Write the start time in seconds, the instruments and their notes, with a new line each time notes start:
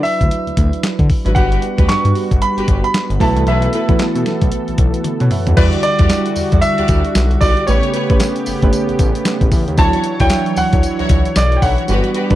Already playing: synth keys F#3 D4 E4 B4
0.03 grand piano E5, open hi-hat
0.21 analog synth bass D2, kick, closed hi-hat
0.31 closed hi-hat
0.47 analog synth bass D2, closed hi-hat
0.57 analog synth bass D2, kick, closed hi-hat
0.73 closed hi-hat
0.83 snare, clap, closed hi-hat
0.99 analog synth bass D3, kick, closed hi-hat
1.10 kick, open hi-hat
1.25 analog synth bass G#1, synth keys F#3 D4 E4 B4, string section E4 F#4 B4, closed hi-hat
1.35 analog synth bass G1, synth keys G3 D4 F#4 B4, analog synth pad G3 B3 F#4, string section F#4 G4 B4, grand piano F#5, kick, closed hi-hat
1.52 closed hi-hat
1.62 closed hi-hat
1.78 analog synth bass D2, synth keys G3 D4 F#4 B4, string section F#4 G4 B4, kick, closed hi-hat
1.89 analog synth bass G2, grand piano C#6, snare, clap, closed hi-hat
2.05 analog synth bass G2, closed hi-hat
2.15 open hi-hat
2.31 analog synth bass G1, kick, closed hi-hat
2.42 grand piano B5, closed hi-hat
2.57 analog synth bass G1, string section F#4 G4 B4, closed hi-hat
2.68 analog synth bass G1, kick, closed hi-hat
2.84 grand piano B5, closed hi-hat
2.94 snare, clap, closed hi-hat
3.10 analog synth bass G1, closed hi-hat
3.19 analog synth bass B1, analog synth pad E3 A4, synth keys A3 E4 F#4 B4, string section E4 A4 B4, grand piano A5, kick, open hi-hat
3.36 analog synth bass C2, closed hi-hat
3.46 analog synth bass B1, string section E4 A4 B4, grand piano E5, closed hi-hat
3.62 closed hi-hat
3.73 string section E4 A4 B4, closed hi-hat
3.88 analog synth bass E2, synth keys A3 E4 F#4 B4, kick, closed hi-hat
3.99 analog synth bass B2, snare, clap, closed hi-hat
4.15 analog synth bass B2, closed hi-hat
4.26 snare, closed hi-hat
4.42 analog synth bass B1, kick, closed hi-hat
4.52 closed hi-hat
4.68 analog synth bass B1, closed hi-hat
4.78 analog synth bass B1, kick, closed hi-hat
4.94 closed hi-hat
5.04 closed hi-hat, high tom
5.20 analog synth bass B2, synth keys C#5 F#5, closed hi-hat, mid tom
5.31 synth keys B4 E5, mid tom, open hi-hat
5.47 analog synth bass F2, synth keys F#4 B4, closed hi-hat, floor tom
5.57 analog synth bass E2, analog synth pad D3 G3 F#4, synth keys G3 E4 F#4 D5, string section F#4 G4 D5, grand piano B4, kick, closed hi-hat, crash, tambourine
5.73 closed hi-hat
5.83 grand piano D5, closed hi-hat
5.99 analog synth bass E2, synth keys G3 E4 F#4 D5, string section F#4 G4 D5, kick, closed hi-hat
6.09 snare, clap, closed hi-hat, tambourine
6.26 closed hi-hat
6.36 analog synth bass E2, open hi-hat, tambourine
6.52 analog synth bass E2, synth keys G3 E4 F#4 D5, kick, closed hi-hat
6.61 grand piano E5, closed hi-hat, tambourine
6.78 analog synth bass D2, string section F#4 G4 D5, closed hi-hat
6.88 analog synth bass D2, kick, closed hi-hat, tambourine
7.05 closed hi-hat
7.15 analog synth bass B1, snare, clap, closed hi-hat, tambourine
7.31 closed hi-hat
7.41 analog synth bass B1, string section F#4 G4 D5, grand piano D5, kick, open hi-hat, tambourine
7.57 closed hi-hat
7.67 analog synth bass A1, analog synth pad C#3 B3 G4, synth keys A3 C#4 G4 B4, string section G4 B4 C#5, grand piano C#5, closed hi-hat, tambourine
7.83 closed hi-hat
7.94 string section G4 B4 C#5, closed hi-hat
8.10 analog synth bass A1, synth keys A3 C#4 G4 B4, kick, closed hi-hat
8.20 snare, clap, closed hi-hat, tambourine
8.36 closed hi-hat
8.46 analog synth bass G1, open hi-hat, tambourine
8.62 analog synth bass G1, synth keys A3 C#4 G4 B4, kick, closed hi-hat
8.73 closed hi-hat, tambourine
8.89 analog synth bass A1, closed hi-hat
8.99 analog synth bass A1, kick, closed hi-hat, tambourine
9.15 closed hi-hat
9.25 snare, clap, closed hi-hat, tambourine
9.41 analog synth bass A1, kick, closed hi-hat
9.52 analog synth bass E2, kick, open hi-hat, tambourine
9.68 analog synth bass D#2, closed hi-hat
9.77 analog synth bass D2, analog synth pad E3 F#3 C#5, synth keys F#3 D4 E4 C#5, string section E4 F#4 C#5, grand piano A5, kick, closed hi-hat, tambourine
9.93 closed hi-hat
10.04 closed hi-hat
10.19 analog synth bass D2, synth keys F#3 D4 E4 C#5, string section E4 F#4 C#5, grand piano G5, kick, closed hi-hat
10.30 snare, clap, closed hi-hat, tambourine
10.46 closed hi-hat
10.56 analog synth bass D2, grand piano F#5, open hi-hat, tambourine
10.72 analog synth bass D2, synth keys F#3 D4 E4 C#5, kick, closed hi-hat
10.83 closed hi-hat, tambourine
10.99 analog synth bass C#2, string section E4 F#4 C#5, closed hi-hat
11.09 analog synth bass C#2, kick, closed hi-hat, tambourine
11.25 closed hi-hat
11.36 analog synth bass B1, grand piano D5, snare, clap, closed hi-hat, tambourine
11.52 closed hi-hat
11.57 grand piano G5
11.62 analog synth bass B1, string section E4 F#4 C#5, grand piano F#5, kick, open hi-hat, tambourine
11.78 closed hi-hat
11.88 analog synth bass G1, synth keys G3 D4 F#4 B4, analog synth pad G3 B3 F#4, string section F#4 G4 B4, closed hi-hat, tambourine
12.04 closed hi-hat
12.14 string section F#4 G4 B4, closed hi-hat
12.30 analog synth bass G1, synth keys G3 D4 F#4 B4, kick, closed hi-hat